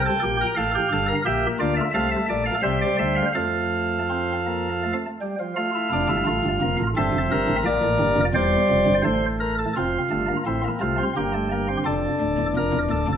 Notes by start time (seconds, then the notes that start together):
Already playing: G5
0.06 A4
0.23 A#1 A#2 G4
0.41 A#4
0.56 A1 A2 A4 F5
0.75 G4
0.92 G1 G2 A4
1.08 A#4
1.25 A#1 A#2 A#3 G4 E5
1.59 D2 D3 F4 D5
1.77 E5
1.94 C2 C3 A3 A4 F5
2.11 E5
2.29 A#1 A#2 D5
2.46 F5
2.63 C2 C3 G3 C5 E5
2.81 D5
2.99 D2 D3 E5
3.16 F5
3.35 F2 F3 A3 A4 F5
4.10 C4
4.46 A#3
4.84 A3
5.21 G3
5.40 F3
5.56 A3 F4 F5
5.75 E4
5.92 F1 F2 D4
6.09 G1 G2 E4
6.27 A1 A2 A3 F4
6.44 G1 G2
6.61 F1 F2 A#3
6.79 A1 A2
6.97 G1 G2 C4 A4 E5
7.14 F1 F2
7.31 G1 G2 A#4
7.48 A1 A2
7.65 A#1 A#2 A#3 D5
7.83 A1 A2
8.00 G1 G2
8.17 F1 F2
8.34 E1 E2 G3 C5 D5
8.69 F1 F2
8.87 G1 G2
9.04 A1 A2 A3 C5
9.40 A#4
9.59 A4
9.76 F1 F2 C4 F4
10.10 G1 G2 A3
10.28 A#3
10.46 A1 A2 C4 E4
10.64 A#3
10.80 C2 C3 A3 F4
10.98 C4
11.16 G1 G2 A#3 G4
11.34 A3
11.52 A#3
11.69 C4
11.86 F1 F2 D4 A4
12.21 D1 D2
12.38 E1 E2
12.56 F1 F2 A#4
12.73 E1 E2
12.90 D1 D2 A4
13.08 F1 F2